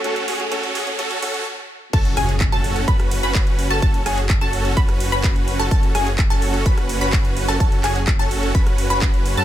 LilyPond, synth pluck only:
\new Staff \with { instrumentName = "Synth pluck" } { \time 4/4 \key fis \minor \tempo 4 = 127 r1 | a''8 gis''16 r8 a''8. b''8. b''4 a''16 | a''8 gis''16 r8 a''8. b''8. b''4 a''16 | a''8 gis''16 r8 a''8. b''8. b''4 a''16 |
a''8 gis''16 r8 a''8. b''8. b''4 a''16 | }